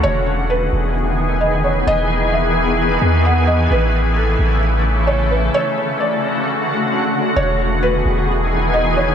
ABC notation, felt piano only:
X:1
M:4/4
L:1/8
Q:1/4=131
K:E
V:1 name="Felt piano"
c2 B2 z2 d c | d2 e2 z2 f d | B2 A2 z2 c B | c2 =d2 z4 |
c2 B2 z2 d c |]